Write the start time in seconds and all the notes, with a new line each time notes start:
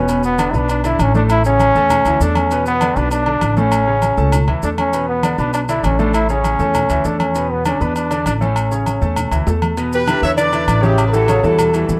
Already playing: E1 C#4
0.08 B2 B3 B4, low agogo, maracas
0.23 B3, high conga, maracas
0.38 D3 D4 D5, high conga, low agogo, maracas
0.51 B1 B3 E4 B4 B5, high conga, maracas
0.56 D4
0.69 D4, high conga, low agogo, maracas
0.84 D3 D4 E4 D5, high conga, low agogo, maracas
0.99 A1 C#4, high conga, low agogo, maracas
1.14 A2 A3 D4 A4, high conga, maracas
1.29 E4, high conga, low agogo, maracas
1.44 C#3 C#4 C#5, high conga, maracas
1.60 high conga, low agogo, maracas
1.75 E2 A3 A4 A5, high conga, maracas
1.90 high conga, low conga, low agogo, maracas
2.05 D2 E3 E4 E5, low agogo, maracas
2.21 E2 A3 D4 A4 A5, high conga, maracas
2.35 C#4, high conga, low agogo, maracas
2.51 B2 B3 B4, high conga, low agogo, maracas
2.66 B3, maracas
2.81 D3 D4 D5, high conga, low agogo, maracas
2.96 B1 B3 D4 B4 B5, high conga, maracas
3.11 D4, high conga, low agogo, maracas
3.26 D3 D4 D5, high conga, low agogo
3.41 A1, high conga, low agogo, maracas
3.57 A2 A3 C#4 A4, high conga, maracas
3.72 high conga, low agogo, maracas
3.87 C#3 C#4 C#5
4.02 high conga, low agogo, maracas
4.17 C#2 A3 A4 A5, high conga, maracas
4.32 high conga, low conga, low agogo, maracas
4.47 D2 E3 E4 E5, high conga, low conga, low agogo
4.63 E2 A3 D4 A4 A5, high conga, maracas
4.78 C#4, high conga, low agogo, maracas
4.93 B2 B3 B4, low agogo, maracas
5.09 B3
5.23 D3 D4 D5, high conga, low agogo, maracas
5.38 B1 B3 D4 B4 B5, high conga, maracas
5.54 D4, high conga, low agogo, maracas
5.68 D3 D4 E4 D5, high conga, low agogo, maracas
5.84 A1 C#4, high conga, low agogo, maracas
5.99 A2 A3 D4 A4, high conga, maracas
6.14 E4, low agogo, maracas
6.29 C#3 C#4 C#5, high conga, maracas
6.44 high conga, low agogo, maracas
6.59 E2 A3 A4 A5, high conga, maracas
6.74 high conga, low conga, low agogo, maracas
6.90 D2 E3 E4 E5, high conga, low agogo, maracas
7.05 E2 A3 D4 A4 A5, high conga, maracas
7.20 C#4, high conga, low agogo, maracas
7.35 B2 B3 B4, high conga, low agogo, maracas
7.51 B3, high conga
7.65 D3 C#4 D4 D5, high conga, low agogo, maracas
7.81 E2 B3 D4 B4 B5, maracas
7.96 D4, high conga, low agogo, maracas
8.11 D3 D4 D5, high conga, low agogo, maracas
8.26 A1 D4, high conga, low agogo, maracas
8.41 A2 A3 C#4 A4, high conga, maracas
8.56 high conga, low agogo, maracas
8.71 C#3 C#4 C#5, high conga, maracas
8.86 high conga, low agogo, maracas
9.02 E2 A3 A4 A5, high conga, maracas
9.16 high conga, low conga, low agogo, maracas
9.31 D2 E3 E4 E5, high conga, low agogo, maracas
9.47 E2 A3 A4 A5, high conga, low timbale, maracas
9.62 high conga, low agogo, maracas
9.77 B2 B3 B4, high conga, low agogo, maracas
9.93 G4 B4, high conga, maracas
10.07 D3 D4 E4, high conga, low agogo, maracas
10.22 E2 C#5 E5, high conga, maracas
10.37 D3 D4 E4 B4 D5, high conga, low agogo, maracas
10.53 D3 D4 E4, high conga, low agogo, maracas
10.68 A1, high conga, low agogo, maracas
10.82 C#3 C#4 E4 G4 C#5, high conga, maracas
10.98 low agogo, maracas
11.06 B4
11.12 E3 E4 F#4 G4 A4, maracas
11.28 C#3 C#4 C#5, high conga, low agogo, maracas
11.43 E2 E3 G3 E4 F#4 A4, high conga, maracas
11.59 high conga, low conga, low agogo, maracas
11.74 E3 G3 E4, low agogo, maracas
11.88 E2, high conga, maracas